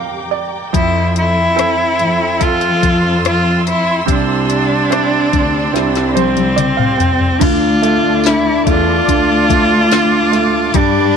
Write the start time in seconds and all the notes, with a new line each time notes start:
Already playing: F2 G3 F4 G4 A#4 F5 G5 A#5 D6
0.31 D5
0.73 F2 F3 E4 A4 C6 E6, kick, closed hi-hat
1.16 E4, closed hi-hat
1.56 C4 E4 A4, cross-stick, closed hi-hat
1.99 F2, closed hi-hat
2.39 F2 F4 A4 E5, kick, closed hi-hat
2.61 closed hi-hat
2.83 kick, closed hi-hat
3.25 F4, cross-stick, closed hi-hat
3.67 E4, cross-stick, closed hi-hat
4.06 C2 C3 G4 D5, kick, closed hi-hat
4.10 D4
4.50 closed hi-hat
4.90 C4 D4 E4, cross-stick, closed hi-hat
5.33 D2, kick, closed hi-hat
5.73 C2 C4 D4 E4, snare, closed hi-hat
5.95 snare, closed hi-hat
6.15 C4 C5, closed hi-hat, high tom
6.37 closed hi-hat, high tom
6.56 D5, closed hi-hat, mid tom
6.77 F5, mid tom
6.98 G5, closed hi-hat, floor tom
7.21 floor tom
7.39 D2 D3 D4 F4 D5 A5 D6, kick, closed hi-hat, crash
7.82 A3, closed hi-hat
8.04 D2
8.24 D3 E4, snare, closed hi-hat, tambourine
8.66 E2 A3 F4, kick, closed hi-hat
9.08 D2 D3, kick, closed hi-hat
9.50 A3, kick, closed hi-hat
9.91 D3, snare, closed hi-hat, tambourine
10.32 A3, snare, closed hi-hat
10.73 G2 G3 D4 G4 D5 B5, kick, closed hi-hat